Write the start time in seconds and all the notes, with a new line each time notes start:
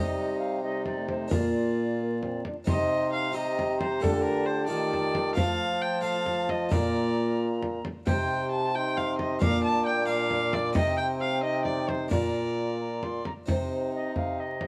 Already playing: C3 G3 C4 D#4 G4 D#5
0.39 F5
0.64 G3 D#4 D#5
0.85 D5, frame drum
0.97 A3
1.09 C5, frame drum
1.28 A#2 A#3 D4 F4 A#4, frame drum
1.32 F4 D5
1.99 A#3
2.23 C4, frame drum
2.45 D4, frame drum
2.64 C3 C4 D#4 G4, frame drum
2.69 D#4 D#5 C6
3.13 F5
3.32 C4 D#4 G4 A#5
3.36 D#5
3.59 frame drum
3.81 C5, frame drum
4.00 D3 A3 F4 A4, frame drum
4.04 D3 A5
4.24 A#4
4.46 C5
4.67 D#3 A3 F4 G4 D5
4.93 frame drum
5.15 frame drum
5.34 F3 A3 C4 F4 F5 A5, frame drum
5.82 G5
6.01 A3 C4 F4 F5
6.26 frame drum
6.49 D#5, frame drum
6.69 A#2 A#3 D4 F4 A#5, frame drum
6.73 D5
7.63 frame drum
7.85 frame drum
8.06 C3 C4 D#4 G4 G5 C6, frame drum
8.52 A5
8.75 D#4 G5 C6
8.97 F5, frame drum
9.19 D#5, frame drum
9.39 A#2 A#3 D4 F5 D6, frame drum
9.64 A5
9.86 G5
10.05 A#3 D4 F5
10.10 D6
10.31 frame drum
10.53 D5, frame drum
10.73 C3 C4 D#4 D#5 G5, frame drum
10.97 G5
11.21 F5
11.43 D#4 D#5
11.65 D5, frame drum
11.89 C5, frame drum
12.08 A#2 A#3 D4 F4 D5 A#5, frame drum
12.81 A#5
13.03 C6, frame drum
13.25 A#5, frame drum
13.46 C3 C4 D#4, frame drum
13.50 C5
13.95 D#5
14.16 F5, frame drum
14.40 D#5
14.61 frame drum